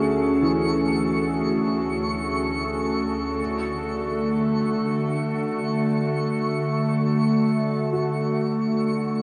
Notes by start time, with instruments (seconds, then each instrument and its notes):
Already playing: ambient pad D2 C#4 F#4 G#4 A4, synth drone D3 A3, felt piano C#5, synth texture C#6
0.42 felt piano E3
3.40 ambient pad D3
3.50 ambient pad A3
7.93 felt piano F#4